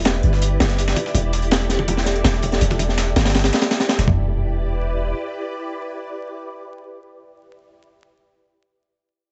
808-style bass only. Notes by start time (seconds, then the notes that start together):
Already playing: E1
0.24 G1
0.60 F#1
1.15 E1
2.25 E1
2.61 E1
3.16 G1
3.99 D1
4.08 E1